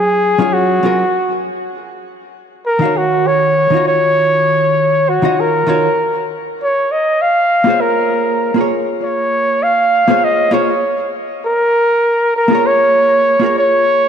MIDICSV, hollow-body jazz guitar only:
0, 0, Header, 1, 2, 480
1, 0, Start_track
1, 0, Key_signature, -5, "minor"
1, 0, Tempo, 606061
1, 1382, Time_signature, 4, 2, 24, 8
1, 11155, End_track
2, 0, Start_track
2, 0, Title_t, "Hollow-body jazz guitar"
2, 0, Program_c, 0, 26
2, 0, Note_on_c, 0, 54, 73
2, 0, Note_on_c, 0, 61, 64
2, 0, Note_on_c, 0, 65, 64
2, 0, Note_on_c, 0, 73, 73
2, 271, Note_off_c, 0, 54, 0
2, 278, Note_off_c, 0, 61, 0
2, 283, Note_off_c, 0, 65, 0
2, 296, Note_off_c, 0, 73, 0
2, 304, Note_on_c, 0, 54, 80
2, 310, Note_on_c, 0, 61, 78
2, 317, Note_on_c, 0, 65, 74
2, 323, Note_on_c, 0, 68, 75
2, 331, Note_on_c, 0, 73, 88
2, 631, Note_off_c, 0, 54, 0
2, 634, Note_off_c, 0, 61, 0
2, 638, Note_off_c, 0, 65, 0
2, 641, Note_off_c, 0, 68, 0
2, 645, Note_off_c, 0, 73, 0
2, 656, Note_on_c, 0, 54, 83
2, 661, Note_on_c, 0, 61, 82
2, 668, Note_on_c, 0, 65, 76
2, 674, Note_on_c, 0, 68, 82
2, 681, Note_on_c, 0, 70, 94
2, 818, Note_off_c, 0, 54, 0
2, 820, Note_off_c, 0, 61, 0
2, 824, Note_off_c, 0, 65, 0
2, 827, Note_off_c, 0, 68, 0
2, 830, Note_off_c, 0, 70, 0
2, 2209, Note_on_c, 0, 51, 75
2, 2222, Note_on_c, 0, 63, 68
2, 2233, Note_on_c, 0, 77, 73
2, 2247, Note_on_c, 0, 66, 70
2, 2258, Note_on_c, 0, 73, 80
2, 2910, Note_off_c, 0, 51, 0
2, 2916, Note_off_c, 0, 63, 0
2, 2922, Note_off_c, 0, 77, 0
2, 2929, Note_off_c, 0, 66, 0
2, 2932, Note_on_c, 0, 51, 76
2, 2935, Note_off_c, 0, 73, 0
2, 2944, Note_on_c, 0, 63, 70
2, 2958, Note_on_c, 0, 65, 66
2, 2970, Note_on_c, 0, 66, 64
2, 2982, Note_on_c, 0, 75, 74
2, 4112, Note_off_c, 0, 51, 0
2, 4118, Note_off_c, 0, 63, 0
2, 4124, Note_off_c, 0, 65, 0
2, 4130, Note_off_c, 0, 66, 0
2, 4135, Note_on_c, 0, 51, 79
2, 4137, Note_off_c, 0, 75, 0
2, 4142, Note_on_c, 0, 63, 74
2, 4147, Note_on_c, 0, 65, 72
2, 4154, Note_on_c, 0, 66, 73
2, 4158, Note_on_c, 0, 75, 91
2, 4467, Note_off_c, 0, 51, 0
2, 4470, Note_off_c, 0, 63, 0
2, 4473, Note_off_c, 0, 65, 0
2, 4476, Note_off_c, 0, 66, 0
2, 4478, Note_off_c, 0, 75, 0
2, 4487, Note_on_c, 0, 51, 83
2, 4494, Note_on_c, 0, 63, 79
2, 4499, Note_on_c, 0, 65, 76
2, 4505, Note_on_c, 0, 66, 77
2, 4511, Note_on_c, 0, 73, 89
2, 4653, Note_off_c, 0, 51, 0
2, 4657, Note_off_c, 0, 63, 0
2, 4659, Note_off_c, 0, 65, 0
2, 4662, Note_off_c, 0, 66, 0
2, 4665, Note_off_c, 0, 73, 0
2, 6051, Note_on_c, 0, 58, 79
2, 6063, Note_on_c, 0, 65, 65
2, 6075, Note_on_c, 0, 68, 70
2, 6087, Note_on_c, 0, 72, 69
2, 6100, Note_on_c, 0, 73, 80
2, 6751, Note_off_c, 0, 58, 0
2, 6757, Note_off_c, 0, 65, 0
2, 6763, Note_off_c, 0, 68, 0
2, 6766, Note_on_c, 0, 58, 71
2, 6769, Note_off_c, 0, 72, 0
2, 6775, Note_off_c, 0, 73, 0
2, 6779, Note_on_c, 0, 65, 66
2, 6792, Note_on_c, 0, 68, 67
2, 6803, Note_on_c, 0, 70, 69
2, 6816, Note_on_c, 0, 73, 76
2, 7948, Note_off_c, 0, 58, 0
2, 7955, Note_off_c, 0, 65, 0
2, 7961, Note_off_c, 0, 68, 0
2, 7967, Note_off_c, 0, 70, 0
2, 7973, Note_off_c, 0, 73, 0
2, 7980, Note_on_c, 0, 58, 85
2, 7985, Note_on_c, 0, 65, 74
2, 7992, Note_on_c, 0, 68, 74
2, 7998, Note_on_c, 0, 72, 79
2, 8005, Note_on_c, 0, 73, 93
2, 8309, Note_off_c, 0, 58, 0
2, 8312, Note_off_c, 0, 65, 0
2, 8315, Note_off_c, 0, 68, 0
2, 8318, Note_off_c, 0, 72, 0
2, 8321, Note_off_c, 0, 73, 0
2, 8324, Note_on_c, 0, 58, 88
2, 8332, Note_on_c, 0, 65, 84
2, 8336, Note_on_c, 0, 68, 79
2, 8344, Note_on_c, 0, 72, 83
2, 8348, Note_on_c, 0, 73, 98
2, 8492, Note_off_c, 0, 58, 0
2, 8496, Note_off_c, 0, 65, 0
2, 8498, Note_off_c, 0, 68, 0
2, 8502, Note_off_c, 0, 72, 0
2, 8504, Note_off_c, 0, 73, 0
2, 9884, Note_on_c, 0, 58, 82
2, 9897, Note_on_c, 0, 65, 71
2, 9907, Note_on_c, 0, 68, 69
2, 9922, Note_on_c, 0, 70, 75
2, 9936, Note_on_c, 0, 73, 84
2, 10588, Note_off_c, 0, 58, 0
2, 10594, Note_off_c, 0, 65, 0
2, 10599, Note_off_c, 0, 68, 0
2, 10607, Note_off_c, 0, 70, 0
2, 10608, Note_on_c, 0, 58, 74
2, 10614, Note_off_c, 0, 73, 0
2, 10621, Note_on_c, 0, 65, 67
2, 10635, Note_on_c, 0, 68, 69
2, 10645, Note_on_c, 0, 70, 68
2, 10659, Note_on_c, 0, 73, 80
2, 11155, Note_off_c, 0, 58, 0
2, 11155, Note_off_c, 0, 65, 0
2, 11155, Note_off_c, 0, 68, 0
2, 11155, Note_off_c, 0, 70, 0
2, 11155, Note_off_c, 0, 73, 0
2, 11155, End_track
0, 0, End_of_file